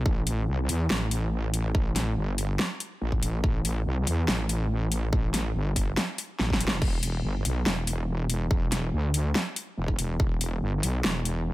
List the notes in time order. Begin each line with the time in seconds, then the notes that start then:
0.06 A1, kick
0.27 closed hi-hat
0.48 C2
0.69 E2, closed hi-hat
0.90 A1, snare
1.11 closed hi-hat
1.54 closed hi-hat
1.75 A1, kick
1.96 snare, closed hi-hat
2.17 G1
2.38 closed hi-hat
2.59 snare
2.80 closed hi-hat
3.01 A1
3.12 kick
3.23 A1, closed hi-hat
3.44 A1, kick
3.65 closed hi-hat
3.86 C2
4.07 E2, closed hi-hat
4.28 A1, snare
4.49 closed hi-hat
4.92 closed hi-hat
5.13 A1, kick
5.34 snare, closed hi-hat
5.55 G1
5.76 kick, closed hi-hat
5.97 snare, closed hi-hat
6.18 closed hi-hat
6.39 A1, snare
6.50 kick, snare
6.61 closed hi-hat
6.68 snare
6.82 E1, kick, crash
7.03 closed hi-hat
7.24 G1
7.45 B1, closed hi-hat
7.66 E1, snare
7.87 closed hi-hat
8.30 closed hi-hat
8.51 E1, kick
8.72 snare, closed hi-hat
8.93 D2
9.14 closed hi-hat
9.35 snare
9.56 closed hi-hat
9.77 E1
9.88 kick
9.99 E1, closed hi-hat
10.20 E1, kick
10.41 closed hi-hat
10.62 G1
10.83 B1, closed hi-hat
11.04 E1, snare
11.25 closed hi-hat